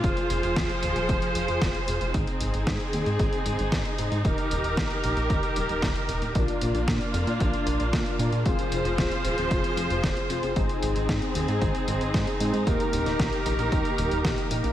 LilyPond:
<<
  \new Staff \with { instrumentName = "Analog polysynth" } { \time 4/4 \key f \dorian \tempo 4 = 114 r1 | r1 | r1 | <d' f' bes' d''>2.~ <d' f' bes' d''>8 <d' f' bes' d''>8 |
<c' f' aes' c''>2.~ <c' f' aes' c''>8 <c' f' aes' c''>8 | <c' ees' aes' c''>2.~ <c' ees' aes' c''>8 <c' ees' aes' c''>8 | <bes ees' g' bes'>2.~ <bes ees' g' bes'>8 <bes ees' g' bes'>8 | }
  \new Staff \with { instrumentName = "String section" } { \time 4/4 \key f \dorian <f f' aes' c''>1 | <c' ees' aes'>1 | <ees g' bes'>1 | <bes d' f'>1 |
<f f' aes' c''>1 | <c' ees' aes'>1 | <ees g' bes'>1 | }
  \new Staff \with { instrumentName = "Analog synth bass" } { \clef bass \time 4/4 \key f \dorian f,,16 r16 f,,16 f,,16 ees,,16 r16 ees,,16 ees,,16 f,,16 r16 f,,16 f,,16 f,,16 r16 f,,16 f,,16 | aes,,16 r16 aes,,16 aes,,16 aes,16 r16 ees,16 aes,16 aes,,16 r16 aes,,16 aes,,16 aes,16 r16 aes,16 aes,16 | ees,,16 r16 ees,,16 ees,,16 bes,,16 r16 bes,,16 bes,,16 ees,,16 r16 ees,,16 ees,,16 ees,,16 r16 ees,,16 ees,,16 | bes,,16 r16 bes,,16 bes,,16 bes,16 r16 f,16 bes,16 bes,,16 r16 bes,,16 bes,,16 bes,16 r16 bes,16 bes,16 |
f,,16 r16 f,,16 f,,16 ees,,16 r16 ees,,16 ees,,16 f,,16 r16 f,,16 f,,16 f,,16 r16 f,,16 f,,16 | aes,,16 r16 aes,,16 aes,,16 aes,16 r16 ees,16 aes,16 aes,,16 r16 aes,,16 aes,,16 aes,16 r16 aes,16 aes,16 | ees,,16 r16 ees,,16 ees,,16 bes,,16 r16 bes,,16 bes,,16 ees,,16 r16 ees,,16 ees,,16 bes,,16 r16 bes,,16 bes,,16 | }
  \new DrumStaff \with { instrumentName = "Drums" } \drummode { \time 4/4 <hh bd>16 hh16 hh16 hh16 <hh bd sn>16 hh16 hh16 hh16 <hh bd>16 hh16 hh16 hh16 <hh bd sn>16 hh16 hh16 hh16 | <hh bd>16 hh16 hh16 hh16 <hh bd sn>16 hh16 hh16 hh16 <hh bd>16 hh16 hh16 hh16 <hh bd sn>16 hh16 hh16 hh16 | <hh bd>16 hh16 hh16 hh16 <hh bd sn>16 hh16 hh16 hh16 <hh bd>16 hh16 hh16 hh16 <hh bd sn>16 hh16 hh16 hh16 | <hh bd>16 hh16 hh16 hh16 <hh bd sn>16 hh16 hh16 hh16 <hh bd>16 hh16 hh16 hh16 <hh bd sn>16 hh16 hh16 hh16 |
<hh bd>16 hh16 hh16 hh16 <hh bd sn>16 hh16 hh16 hh16 <hh bd>16 hh16 hh16 hh16 <hh bd sn>16 hh16 hh16 hh16 | <hh bd>16 hh16 hh16 hh16 <hh bd sn>16 hh16 hh16 hh16 <hh bd>16 hh16 hh16 hh16 <hh bd sn>16 hh16 hh16 hh16 | <hh bd>16 hh16 hh16 <hh sn>16 <hh bd sn>16 hh16 hh16 hh16 <hh bd>16 hh16 hh16 hh16 <hh bd sn>16 hh16 hh16 hh16 | }
>>